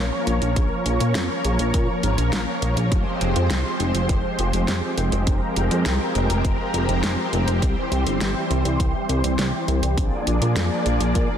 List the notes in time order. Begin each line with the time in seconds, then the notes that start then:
Already playing: A#1 F3 A#3 C#4 A#4 C#5
0.27 A#1, closed hi-hat
0.42 A#1, closed hi-hat
0.56 A#1, kick, closed hi-hat
0.86 A#1, closed hi-hat
1.00 A#2, closed hi-hat
1.15 F2, snare, closed hi-hat
1.45 A#1, closed hi-hat
1.59 A#1, closed hi-hat
1.74 A#2, kick, closed hi-hat
2.03 G#1, closed hi-hat
2.18 A#1, closed hi-hat
2.33 A#1, snare, closed hi-hat
2.62 A#1, closed hi-hat
2.77 A#1, closed hi-hat
2.92 F1 G#3 C4 G4 C5, kick, closed hi-hat
3.21 F1, closed hi-hat
3.36 F2, closed hi-hat
3.50 C2, snare, closed hi-hat
3.80 F1, closed hi-hat
3.95 F1, closed hi-hat
4.09 F1, kick, closed hi-hat
4.39 F1, closed hi-hat
4.53 F1, closed hi-hat
4.68 F1, snare, closed hi-hat
4.98 F1, closed hi-hat
5.12 F1, closed hi-hat
5.27 F1 A#4, kick, closed hi-hat
5.56 F1, closed hi-hat
5.71 F2, closed hi-hat
5.86 C2, snare, closed hi-hat
6.15 F1, closed hi-hat
6.30 F1, closed hi-hat
6.45 F1, kick, closed hi-hat
6.74 F1, closed hi-hat
6.89 F1, closed hi-hat
7.03 F1, snare, closed hi-hat
7.33 F1, closed hi-hat
7.47 F1, closed hi-hat
7.62 C2 E3 G3 C5, kick, closed hi-hat
7.92 C2, closed hi-hat
8.06 G1, closed hi-hat
8.21 G1, snare, closed hi-hat
8.50 C2, closed hi-hat
8.65 C2, closed hi-hat
8.80 C2, kick, closed hi-hat
9.09 C2, closed hi-hat
9.24 C2, closed hi-hat
9.39 C2, snare, closed hi-hat
9.68 C2, closed hi-hat
9.83 C2, closed hi-hat
9.97 A#1 F3 A#3 D4 G#4 D5, kick, closed hi-hat
10.27 A#1, closed hi-hat
10.42 A#2, closed hi-hat
10.56 F2, snare, closed hi-hat
10.86 A#1, closed hi-hat
11.00 A#1, closed hi-hat
11.15 A#2, kick, closed hi-hat